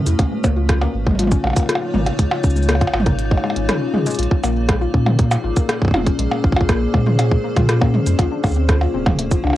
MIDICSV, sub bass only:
0, 0, Header, 1, 2, 480
1, 0, Start_track
1, 0, Tempo, 500000
1, 181, Time_signature, 4, 2, 24, 8
1, 9188, End_track
2, 0, Start_track
2, 0, Title_t, "Sub bass"
2, 0, Program_c, 0, 38
2, 61, Note_on_c, 0, 40, 84
2, 140, Note_off_c, 0, 40, 0
2, 183, Note_on_c, 0, 37, 98
2, 260, Note_off_c, 0, 37, 0
2, 423, Note_on_c, 0, 37, 80
2, 835, Note_off_c, 0, 37, 0
2, 903, Note_on_c, 0, 32, 86
2, 1315, Note_off_c, 0, 32, 0
2, 1382, Note_on_c, 0, 34, 86
2, 1460, Note_off_c, 0, 34, 0
2, 1862, Note_on_c, 0, 32, 104
2, 2018, Note_off_c, 0, 32, 0
2, 2103, Note_on_c, 0, 37, 100
2, 2180, Note_off_c, 0, 37, 0
2, 2342, Note_on_c, 0, 37, 83
2, 2755, Note_off_c, 0, 37, 0
2, 2822, Note_on_c, 0, 32, 89
2, 3235, Note_off_c, 0, 32, 0
2, 3421, Note_on_c, 0, 32, 92
2, 3542, Note_off_c, 0, 32, 0
2, 4021, Note_on_c, 0, 34, 97
2, 4100, Note_off_c, 0, 34, 0
2, 4261, Note_on_c, 0, 34, 80
2, 4675, Note_off_c, 0, 34, 0
2, 4742, Note_on_c, 0, 46, 87
2, 5155, Note_off_c, 0, 46, 0
2, 5221, Note_on_c, 0, 32, 82
2, 5299, Note_off_c, 0, 32, 0
2, 5701, Note_on_c, 0, 29, 102
2, 5858, Note_off_c, 0, 29, 0
2, 5941, Note_on_c, 0, 34, 100
2, 6019, Note_off_c, 0, 34, 0
2, 6182, Note_on_c, 0, 34, 85
2, 6595, Note_off_c, 0, 34, 0
2, 6662, Note_on_c, 0, 46, 86
2, 7075, Note_off_c, 0, 46, 0
2, 7262, Note_on_c, 0, 46, 91
2, 7675, Note_off_c, 0, 46, 0
2, 7741, Note_on_c, 0, 41, 86
2, 7819, Note_off_c, 0, 41, 0
2, 7861, Note_on_c, 0, 38, 101
2, 7939, Note_off_c, 0, 38, 0
2, 8101, Note_on_c, 0, 38, 86
2, 8514, Note_off_c, 0, 38, 0
2, 8582, Note_on_c, 0, 26, 88
2, 8995, Note_off_c, 0, 26, 0
2, 9062, Note_on_c, 0, 36, 90
2, 9140, Note_off_c, 0, 36, 0
2, 9188, End_track
0, 0, End_of_file